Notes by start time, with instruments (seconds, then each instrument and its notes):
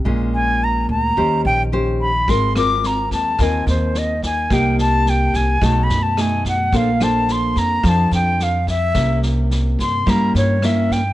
0.05 upright bass A#1, nylon-string guitar A#2 G#3 C#4 F4
0.35 flute G#5
0.64 flute A#5
0.89 upright bass D2, flute A#5
1.17 upright bass D#2, nylon-string guitar D#3 C#4 G4 C5
1.45 upright bass A#1, flute G5
1.72 nylon-string guitar C#4 G4 C5
2.01 flute B5
2.28 upright bass G#1, nylon-string guitar G#3 C4 F4 A#4, flute C6, kick, snare
2.56 nylon-string guitar C4 F4 A#4, flute D6, cross-stick, snare
2.83 flute A#5, snare
3.11 upright bass D#2, flute A5, kick, snare
3.39 upright bass D#2, nylon-string guitar D#3 C4 F4 A#4, kick, cross-stick, snare
3.43 flute G#5
3.67 upright bass D#2, flute C5, snare
3.94 flute D#5, snare
4.23 flute G#5, kick, snare
4.50 upright bass C2, nylon-string guitar C3 A#3 D#4 G4, flute G5, kick, cross-stick, snare
4.78 flute A5, snare
5.06 flute G5, snare
5.34 upright bass C2, flute G#5, kick, snare
5.61 upright bass B1, nylon-string guitar B2 A3 D#4 G#4, flute A5, kick, cross-stick, snare
5.84 flute B5
5.89 upright bass F#2, snare
6.03 flute A5
6.17 nylon-string guitar A3 D#4 G#4, flute G#5, cross-stick, snare
6.45 flute F#5, kick, snare
6.72 upright bass A#1, nylon-string guitar A#3 D4 A4 C5, kick, snare
6.76 flute F5
7.00 nylon-string guitar D4 A4 C5, flute A5, cross-stick, snare
7.28 flute C6, snare
7.56 upright bass F2, flute A#5, kick, snare
7.83 upright bass F2, nylon-string guitar F3 D4 A4 C5, kick, cross-stick, snare
7.89 flute A5
8.11 upright bass F2, flute G5, snare
8.40 flute F5, snare
8.67 flute E5, kick, snare
8.95 upright bass C2, nylon-string guitar C3 A#3 C#4 E4, kick, cross-stick, snare
9.22 snare
9.51 snare
9.79 upright bass G2, flute C6, kick, snare
10.06 upright bass G2, nylon-string guitar G3 A#3 C#4 E4, flute A#5, kick, cross-stick, snare
10.35 upright bass G2, flute C#5, snare
10.62 nylon-string guitar A#3 C#4 E4, flute E5, cross-stick, snare
10.90 flute G5, kick, snare